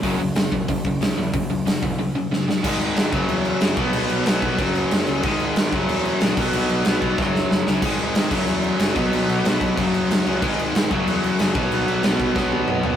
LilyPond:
<<
  \new Staff \with { instrumentName = "Overdriven electric guitar" } { \clef bass \time 4/4 \key fis \mixolydian \tempo 4 = 185 <fis, cis fis>8 <fis, cis>8 <fis, cis>8 <fis, cis>8 <fis, cis>8 <fis, cis>8 <fis, cis>8 <fis, cis>8 | <fis, cis>8 <fis, cis>8 <fis, cis>8 <fis, cis>8 <fis, cis>8 <fis, cis>8 <fis, cis>8 <fis, cis>8 | <gis, dis gis>4. <fis, cis fis>4. <fis, cis fis>8 <b, fis b>8~ | <b, fis b>4 <b, fis b>4 <fis, cis fis>4. <fis, cis fis>8 |
<gis, dis gis>4. <fis, cis fis>4. <fis, cis fis>8 <b, fis b>8~ | <b, fis b>4 <b, fis b>4 <fis, cis fis>4. <fis, cis fis>8 | <gis, dis gis>4. <fis, cis fis>4. <fis, cis fis>8 <b, fis b>8~ | <b, fis b>4 <b, fis b>4 <fis, cis fis>4. <fis, cis fis>8 |
<gis, dis gis>4. <fis, cis fis>4. <fis, cis fis>8 <b, fis b>8~ | <b, fis b>4 <b, fis b>4 <b, fis b>4. <b, fis b>8 | }
  \new Staff \with { instrumentName = "Overdriven electric guitar" } { \clef bass \time 4/4 \key fis \mixolydian <fis, cis fis>8 <fis, cis>8 <fis, cis>8 <fis, cis>8 <fis, cis>8 <fis, cis>8 <fis, cis>8 <fis, cis>8 | <fis, cis>8 <fis, cis>8 <fis, cis>8 <fis, cis>8 <fis, cis>8 <fis, cis>8 <fis, cis>8 <fis, cis>8 | <gis, dis gis>4. <fis, cis fis>2 <b, fis b>8~ | <b, fis b>2 <fis, cis fis>2 |
<gis, dis gis>4. <fis, cis fis>2 <b, fis b>8~ | <b, fis b>2 <fis, cis fis>2 | <gis, dis gis>4. <fis, cis fis>2 <b, fis b>8~ | <b, fis b>2 <fis, cis fis>2 |
<gis, dis gis>4. <fis, cis fis>2 <b, fis b>8~ | <b, fis b>2 <b, fis b>2 | }
  \new Staff \with { instrumentName = "Picked electric bass" } { \clef bass \time 4/4 \key fis \mixolydian fis,,8 fis,,8 fis,,8 e,,8 fis,,8 fis,,8 cis,8 e,8 | fis,,8 fis,,8 fis,,8 e,,8 r2 | gis,,8 gis,,8 gis,,8 fis,,8 e,4 fis,,8 b,,8 | b,,8 b,,8 b,,8 b,,8 fis,,4 fis,,8 cis,8 |
gis,,8 gis,,8 gis,,8 fis,,8 e,4 ais,,8 b,,8 | b,,8 b,,8 b,,8 b,,8 fis,,4 fis,,8 cis,8 | gis,,8 gis,,8 gis,,8 fis,,8 e,4 fis,,8 b,,8 | b,,8 b,,8 b,,8 b,,8 fis,,4 fis,,8 cis,8 |
gis,,8 gis,,8 gis,,8 fis,,8 e,4 fis,,8 b,,8 | b,,8 b,,8 b,,8 b,,8 b,,4 b,,8 fis,,8 | }
  \new DrumStaff \with { instrumentName = "Drums" } \drummode { \time 4/4 <hho bd>4 <hho sn>8 bd8 <hho bd>8 bd8 <hho sn>4 | <hho bd>4 <hho sn>8 bd8 r4 sn8 sn8 | <cymc bd>8 cymc8 <cymc sn>8 <cymc bd>8 cymc8 cymc8 <cymc sn>8 <cymc bd>8 | cymc8 cymc8 <cymc sn>8 <cymc bd>8 <cymc bd>8 cymc8 <cymc sn>8 cymc8 |
<cymc bd>8 cymc8 <cymc sn>8 <cymc bd>8 cymc8 cymc8 <cymc sn>8 <cymc bd>8 | cymc8 cymc8 <cymc sn>8 <cymc bd>8 <bd sn>8 sn8 sn8 sn8 | <cymc bd>8 cymc8 <cymc sn>8 <cymc bd>8 cymc8 cymc8 <cymc sn>8 <cymc bd>8 | cymc8 cymc8 <cymc sn>8 <cymc bd>8 <cymc bd>8 cymc8 <cymc sn>8 cymc8 |
<cymc bd>8 cymc8 <cymc sn>8 <cymc bd>8 cymc8 cymc8 <cymc sn>8 <cymc bd>8 | cymc8 cymc8 <cymc sn>8 <cymc bd>8 <bd sn>8 tommh8 toml8 tomfh8 | }
>>